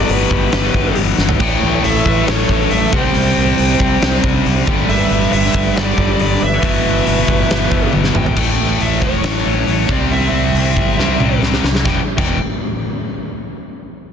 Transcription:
Already playing: E2 B2 E3 B3 D5 F#5
0.09 G1 G4 B4, open hi-hat
0.31 G1, kick
0.52 G1, snare, open hi-hat
0.74 G1, kick
0.95 G1, open hi-hat
1.18 G1, snare
1.29 floor tom
1.39 A1 A2 E3 A3 E4 B4 C#5 G5, kick, crash
1.63 A1
1.84 A1 A4 E5, open hi-hat
2.06 A1 B4 E5, kick
2.27 A1 A4 C#5, snare, open hi-hat
2.48 A1 A4 C#5, kick
2.71 A1 A4 E5, open hi-hat
2.93 C2 C3 G3 C4 G4 C5 D5 G5, kick
3.14 C2, open hi-hat
3.37 C2
3.58 C2, open hi-hat
3.80 C2, kick
4.02 C2, snare, open hi-hat
4.24 C2, kick
4.46 C2, open hi-hat
4.67 G1 G2 D3 G3 D4 A4, kick
4.89 G1 B4 E5, open hi-hat
5.11 G1
5.32 G1 B4 E5, open hi-hat
5.45 snare
5.54 G1, kick
5.77 G1 G4 D5, snare, open hi-hat
5.98 G1, kick
6.19 G1 G4 D5, open hi-hat
6.42 G1 B4 E5
6.62 G1 E2 B2 E3 B3 F#4, kick, open hi-hat
6.85 G1
7.06 G1, open hi-hat
7.28 G1, kick
7.50 G1, snare, open hi-hat
7.72 G1, kick
7.93 G1, high tom
8.04 snare
8.15 G#1 G5, mid tom
8.26 floor tom
8.36 A1 A2 E3 A3, kick, crash
8.60 A1
8.80 A1 E5, open hi-hat
9.02 E1 C#5, kick
9.24 A1, snare, open hi-hat
9.45 A1 A2 E3 A3
9.67 A1 A2 E3 A3, open hi-hat
9.89 C2 C3 G3 C4 D5, kick
10.11 C2 E5, open hi-hat
10.32 C2
10.54 C2, open hi-hat
10.77 G1, kick
10.98 C2 C3 G3 C4, snare
11.19 C2 C3 G3 C4, mid tom
11.42 C2, snare
11.54 snare
11.64 C2, snare
11.75 snare
11.85 E1 E2 B2 E3 G5, kick, snare
12.18 E1 E2 B2 E3 G5, kick, crash

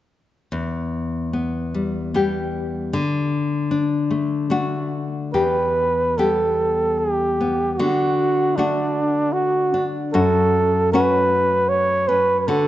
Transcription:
0.52 E2
1.33 B3
1.74 G3
2.14 G3 B3 G4
2.93 D3
3.71 D4
4.11 A3
4.50 A3 D4 F#4
5.33 E2 G4 B4
6.18 G3 B3 G4 A4
6.99 G4
7.41 B3
7.73 G4
7.77 D3 F#4
8.56 A3 D4 F#4
9.33 F#4
9.74 D4
10.13 F#2 F#4 A4
10.92 A3 C#4 F#4 B4
11.69 C#5
12.08 C#4 B4
12.40 B4
12.48 D3 F#4 A4

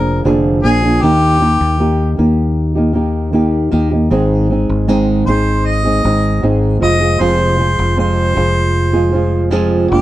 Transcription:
Already playing: F1 F3 A#3 D4 G#4 A#4
0.24 F1 F2 D3 F3 A#3 D4 G#4
0.63 A#1 F3 A#3 D4 G#4
0.82 F3 A#3 D4 G#4
1.02 D#2 D#3 A#3 D#4 G4
1.40 D#3 A#3 D#4 G4
1.61 D#2
1.79 D#3 A#3 D#4 G4
2.17 D#2 D#3 A#3 D#4 G4
2.75 A#3 D#4 G4
2.93 D#3 A#3 D#4 G4
3.32 D#3 A#3 D#4 G4
3.71 D#2 D#3 A#3 D#4 G4
3.91 A#3 D#4 G4
4.10 G#1 G#2 D#3 G#3 C4 D#4 G#4
4.50 G#3 C4 D#4 G#4
4.69 G#1
4.88 G#2 D#3 G#3 C4 D#4 G#4
5.26 G#1 G#3 C4 D#4 G#4 C5
5.66 D#5
5.84 G#3 C4 D#4 G#4
6.04 G#1 G#3 C4 D#4 G#4
6.42 G#1 G#2 D#3 G#3 C4 D#4 G#4
6.80 F1 F3 G#3 F4 G#4 D#5
7.00 F3 G#3 F4 G#4
7.19 F1 F2 C3 F3 G#3 F4 G#4 C5
7.58 F3 G#3 F4 G#4
7.79 F1
7.97 F2 C3 F3 G#3 F4 G#4 C5
8.36 F1 F3 G#3 F4 G#4
8.93 F3 G#3 F4 G#4
9.12 F3 G#3 F4 G#4
9.51 F2 C3 F3 G#3 F4 G#4
9.90 F1 G#3 A#3 D4 F4 G4

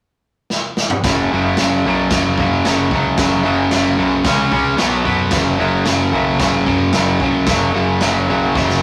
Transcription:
0.50 snare
0.77 snare
0.90 mid tom
1.04 F#1 F#2 C#3 F#3, kick, snare, open hi-hat
1.32 F#1 F#2 C#3 F#3
1.57 F#1 F#2 C#3 F#3, snare, open hi-hat
1.85 B1 F#2 C#3 F#3
2.10 F#1 F#2 C#3 F#3, kick, snare, open hi-hat
2.38 F#2 C#3 F#3, kick
2.65 F#1 F#2 C#3 F#3, snare, open hi-hat
2.91 C#2 F#2 C#3 F#3, kick
3.17 F#1 F#2 C#3 F#3, kick, snare, open hi-hat
3.44 F#1 F#2 C#3 F#3
3.71 F#1 F#2 C#3 F#3, snare, open hi-hat
3.98 B1 F#2 C#3 F#3
4.24 C#2 C#3 G#3 C#4, kick, snare, open hi-hat
4.51 C#2 C#3 G#3 C#4, kick
4.77 B1 B2 F#3 B3, snare, open hi-hat
5.05 F#2 B2 F#3 B3, kick
5.31 F#1 F#2 C#3 F#3, kick, snare, open hi-hat
5.58 F#1 F#2 C#3 F#3
5.85 F#1 F#2 C#3 F#3, snare, open hi-hat
6.13 B1 F#2 C#3 F#3
6.39 F#1 F#2 C#3 F#3, kick, snare, open hi-hat
6.65 F#2 C#3 F#3, kick
6.92 F#1 F#2 C#3 F#3, snare, open hi-hat
7.20 C#2 F#2 C#3 F#3, kick
7.46 F#1 F#2 C#3 F#3, kick, snare, open hi-hat
7.74 F#1 F#2 C#3 F#3
8.00 F#1 F#2 C#3 F#3, snare, open hi-hat
8.29 B1 F#2 C#3 F#3
8.55 F#1 F#2 C#3 F#3, kick, snare
8.69 snare

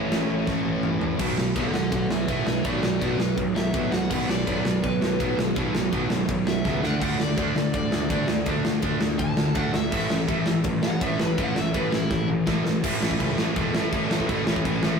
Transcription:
Already playing: A2 E3 A3 C#4 C#5
0.11 A1, snare, crash
0.30 A1
0.46 A1 A2 E3 A3, kick, snare
0.65 A1
0.83 A1, mid tom
1.01 A1, floor tom
1.19 B1 B2 F#3 B3, kick, crash
1.37 B1 B2 F#3, snare
1.55 B1 B2 F#3 B3 A4 F#5, kick, ride
1.73 B1 B2 F#3 A4 F#5, snare
1.91 B1 B2 F#3 A4 F#5, kick, ride
2.09 B1 B2 F#3 B4 E5, snare
2.27 B1 B2 F#3 B3 B4 E5, kick, ride
2.46 B1 B2 F#3 B4 E5, snare
2.63 B1 B2 F#3 B3 F#4 D5, kick, ride
2.82 B1 B2 F#3 F#4 D5, snare
2.99 B1 B2 F#3 B3 F#4 D5, kick, ride
3.18 B1 B2 F#3 B4, snare
3.37 B1 B2 F#3, kick, ride
3.55 B1 B2 F#3 E5, snare
3.73 B1 B2 F#3 B3, kick, ride
3.92 B1 B2 F#3 F#5, snare
4.10 B1 B2 F#3 B3 F#5, kick, crash
4.28 B1 B2 F#3 D5, snare
4.47 B1 B2 F#3 B3, kick, ride
4.65 B1 B2 F#3, snare
4.83 B1 B2 F#3 B4, kick, ride
5.01 B1 B2 F#3, snare
5.19 B1 B2 F#3 B3, kick, ride
5.37 B1 B2 F#3, snare
5.55 B1 B2 F#3 B3, kick, ride
5.74 B1 B2 F#3, snare
5.92 B1 B2 F#3 B3, kick, ride
6.10 B1 B2 F#3, snare
6.28 B1 B2 F#3, kick, ride
6.47 B1 B2 F#3 E5, snare
6.64 C#2 B2 F#3 B3, kick, snare
6.82 D2 D3 A3 D4 F#5, snare
7.00 D2 D3 A3 D4 F#5, kick, crash
7.19 D2 D3 A3 D5, snare
7.36 D2 D3 A3 D4, kick, ride
7.55 D2 D3 A3, snare
7.73 D2 D3 A3 D5, kick, ride
7.92 D2 D3 A3, snare
8.10 D2 D3 A3 D4, kick, ride
8.28 D2 D3 A3 D4, snare
8.46 D2 D3 A3 D4, kick, ride
8.65 D2 D3 A3, snare
8.82 D2 D3 A3 D4, kick, ride
9.01 D2 D3 A3, snare
9.19 D2 D3 A3 A5, kick, ride
9.37 D2 D3 A3, snare
9.55 D2 D3 A3 D4 F#5, kick, ride
9.73 D2 D3 A3 E5, snare
9.91 A1 A2 E3 A3 E5, kick, crash
10.10 A1 A2 E3, snare
10.27 A1 A2 E3 A3, kick, ride
10.45 A1 A2 E3, snare
10.64 A1 A2 E3, kick, ride
10.82 A1 A2 E3 F#5, snare
11.00 A1 A2 E3 A3 E5, kick, ride
11.19 A1 A2 E3 B4, snare
11.37 A1 A2 E3 A3 F#5, kick, ride
11.55 A1 A2 E3 E5, snare
11.74 A1 A2 E3 A3 B4, kick, ride
11.92 A1 A2 E3 E4, snare
12.10 A1 A2 E3, kick, snare
12.28 A1 A2 E3
12.46 A1 A2 E3 A3, kick, snare
12.64 A1 A2 E3, snare
12.83 A1 A2 E3 A3, kick, crash
13.01 A1 A2 E3 A3, snare
13.11 kick
13.20 C#2 A2 E3 A3, kick, crash
13.37 A1 A2 E3 A3, snare
13.55 E1 A2 E3 A3, kick, crash
13.73 A1 A2 E3 A3, snare
13.92 A1 A2 E3 A3, kick, crash
14.09 A1 A2 E3 A3, snare
14.20 kick
14.28 A1 A2 E3 A3, kick, crash
14.46 A1 A2 E3 A3, snare
14.56 kick
14.64 A1 A2 E3 A3, kick, crash
14.82 A2 E3 A3, snare

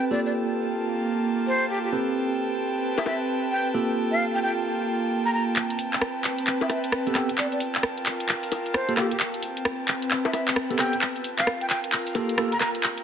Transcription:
Already playing: C4 B4 G5 A5
0.11 A#3 F4 G4 A4 D5
0.25 A#3 D5
1.47 C5
1.70 G4
1.84 G4
1.92 C4 G4 A4 B4
2.22 B4
2.98 E5, high bongo
3.06 E5, high bongo
3.52 G5
3.74 A#3 F4 G4 A4
3.91 A#3
4.11 F5
4.34 G5
4.43 G5
5.25 A#5
5.34 A#5
5.56 C4, clap
5.65 B4
5.70 closed hi-hat
5.79 open hi-hat
5.93 clap, closed hi-hat
6.02 cross-stick
6.24 clap, open hi-hat
6.39 closed hi-hat
6.47 clap
6.61 E5, high bongo
6.70 E5, cross-stick, open hi-hat, high bongo
6.84 closed hi-hat
6.92 cross-stick
7.07 B3 C4 G4 A4, closed hi-hat
7.15 B3 C4 G4 A4 G5, cross-stick, clap, open hi-hat
7.29 closed hi-hat
7.38 F4 D5, clap
7.52 A#4 D5, closed hi-hat
7.60 open hi-hat
7.75 clap, closed hi-hat
7.83 cross-stick
7.98 closed hi-hat
8.06 clap, open hi-hat
8.20 closed hi-hat
8.29 clap
8.43 open hi-hat
8.52 open hi-hat, high bongo
8.66 closed hi-hat
8.74 C5, cross-stick
8.89 A#3 F4 G4 A4, closed hi-hat
8.97 A#3 F4 G4 A4, cross-stick, clap, open hi-hat
9.11 G4, closed hi-hat
9.20 C4, clap
9.34 closed hi-hat
9.41 B4, open hi-hat
9.57 closed hi-hat
9.65 cross-stick
9.88 clap, open hi-hat
10.02 closed hi-hat
10.11 clap
10.25 E5, high bongo
10.33 E5, cross-stick, open hi-hat, high bongo
10.48 clap, closed hi-hat
10.56 cross-stick
10.70 B3 C4 G4 A4, closed hi-hat
10.79 B3 C4 G4 A4 G5, cross-stick, clap, open hi-hat
10.93 closed hi-hat
11.01 F4, clap
11.16 closed hi-hat
11.24 open hi-hat
11.31 A#4
11.38 F5, clap, closed hi-hat
11.47 cross-stick
11.61 G5, closed hi-hat
11.69 G5, clap, open hi-hat
11.84 closed hi-hat
11.92 clap
12.07 open hi-hat
12.15 A#3 F4 G4 A4, open hi-hat, high bongo
12.29 closed hi-hat
12.38 A#3 F4 G4 A4, cross-stick
12.52 A#5, closed hi-hat
12.60 A#5, cross-stick, clap, open hi-hat
12.75 closed hi-hat
12.83 C4, clap
12.98 closed hi-hat

